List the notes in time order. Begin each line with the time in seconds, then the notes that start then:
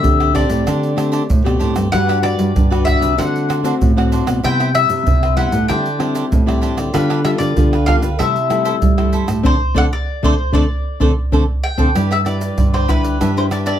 Already playing: D4 G4 C5 D5 E5
0.02 A2 D3 A3 C4 G4, pandeiro, shaker, surdo
0.20 G4 C5 D5, pandeiro, tamborim, shaker
0.33 A3 C4 D4 G4 C5 D5, pandeiro, tamborim, surdo
0.49 A2 G4 C5 D5, pandeiro, shaker
0.65 D3 D4 G4 C5 D5, pandeiro, tamborim, shaker, surdo
0.83 pandeiro, shaker
0.96 A3 C4 D4 G4 C5 D5, pandeiro, tamborim, shaker
1.12 D4 G4 C5 D5, pandeiro, shaker
1.28 A2, pandeiro, shaker, surdo
1.44 B2 A3 C4 G4 C5 D5, pandeiro, tamborim, shaker
1.59 A2 D4 G4 C5 D5, pandeiro
1.75 G2 G4 C5 D5, pandeiro, tamborim, shaker
1.92 G2 G3 D4 F#4 G4 B4 D5 F#5, pandeiro, tamborim, shaker, surdo
2.08 F#4 G4 B4 D5, pandeiro, tamborim, shaker
2.22 D4 F#4 G4 B4 D5, pandeiro, tamborim
2.39 G2, pandeiro, shaker
2.55 G2 D3, pandeiro, shaker, surdo
2.70 D4 F#4 G4 B4 D5, pandeiro, tamborim, shaker
2.85 F#4 G4 B4 D5 E5, pandeiro, tamborim, shaker, surdo
3.01 C3 G4 B4 D5, pandeiro, shaker
3.17 D3 A3 C4 D4 F#4 C5 D5 F#5, pandeiro, tamborim, shaker, surdo
3.36 pandeiro, shaker
3.49 D4 C5 D5 F#5, pandeiro, tamborim, shaker
3.63 A3 C4 D4 F#4 C5 D5 F#5, pandeiro, shaker
3.80 A2, pandeiro, shaker, surdo
3.96 A3 C4 F#4 C5 D5 F#5, pandeiro, tamborim, shaker
4.12 D4 C5 D5 F#5, pandeiro, shaker
4.27 B2 C5 D5 F#5, pandeiro, tamborim, shaker
4.43 C3 G3 B3 E4 B4 C5 E5 G5, pandeiro, tamborim, shaker, surdo
4.60 E4 B4 C5 E5, pandeiro, tamborim, shaker
4.74 G3 E4 B4 C5 E5, pandeiro, tamborim, shaker
4.90 C3, pandeiro, shaker
5.06 G2 C3, pandeiro, shaker, surdo
5.23 B4 C5 E5, pandeiro, tamborim, shaker
5.36 G3 B3 E4 B4 C5 E5 F#5, pandeiro, tamborim
5.52 A2 B4 C5 E5, pandeiro, shaker
5.68 D3 G3 C4 D4 E4 G4 C5 D5 G5, pandeiro, tamborim, shaker, surdo
5.86 pandeiro, shaker
5.99 G3 C4 D4 E4 G4 C5 D5, pandeiro, tamborim
6.15 D4 G4 C5 D5, pandeiro, shaker
6.31 A2, pandeiro, shaker, surdo
6.46 G3 C4 E4 G4 C5 D5, pandeiro, tamborim, shaker
6.61 D4 G4 C5 D5, pandeiro
6.77 D3 G4 C5 D5, pandeiro, tamborim, shaker
6.93 D3 G3 B3 D4 F4 G4 B4 F5, pandeiro, tamborim, shaker, surdo
7.10 D4 G4 B4 F5, pandeiro, tamborim, shaker
7.25 G3 B3 D4 F4 G4 B4 E5 F5, pandeiro, tamborim, shaker
7.38 D3 D5, pandeiro, shaker
7.56 D3 G3 B3 F4, pandeiro, shaker, surdo
7.73 G4 B4 F5, pandeiro, tamborim, shaker
7.86 G3 B3 D4 F4 G4 B4 F5, pandeiro, tamborim, surdo
8.02 D3 G4 B4 F5, pandeiro, shaker
8.18 C3 G3 A3 E4 A4 C5 E5, pandeiro, tamborim, shaker, surdo
8.36 pandeiro, shaker
8.50 G3 A3 E4 A4 C5 E5, pandeiro, tamborim, shaker
8.65 E4 A4 C5 E5, pandeiro, shaker
8.81 G2 G3, pandeiro, shaker, surdo
8.97 G3 A3 E4 A4 C5 E5, pandeiro, tamborim, shaker
9.12 E4 A4 C5 E5, pandeiro, shaker
9.28 A2 A4 C5 E5, pandeiro, tamborim, shaker
9.43 D3 A3 C4 D4 A4 C5 D5, surdo
9.74 D3 A3 C4 D4 A4 C5 D5 F#5, surdo
9.93 D5
10.23 D3 A3 C4 D4 A4 C5 D5, surdo
10.52 D3 A3 C4 D4 A4 C5 D5, surdo
11.00 D3 A3 C4 D4 A4 C5 D5, surdo
11.32 D3 A3 C4 D4 A4 C5 D5, surdo
11.63 G5
11.78 D3 A3 C4 D4 A4 C5 D5, surdo
11.95 G2 G3 D4 E4 G4 B4 D5, pandeiro, tamborim, shaker, surdo
12.11 E4 G4 B4 D5 E5, pandeiro, tamborim, shaker
12.25 D4 E4 G4 B4 D5, pandeiro, tamborim
12.41 pandeiro, shaker
12.57 G2 D3, pandeiro, shaker, surdo
12.73 G4 B4 C5 D5, pandeiro, tamborim, shaker
12.88 D4 E4 G4 B4 D5, pandeiro, tamborim, shaker, surdo
13.03 G4 B4 D5, pandeiro, shaker
13.20 G2 G3 D4 E4 G4 B4 E5, pandeiro, tamborim, shaker, surdo
13.37 D4 E4 B4 C5, pandeiro, shaker
13.51 D4 E4 G4 B4 D5 E5, pandeiro, tamborim, shaker
13.66 D4 G4 B4 D5 E5, pandeiro, shaker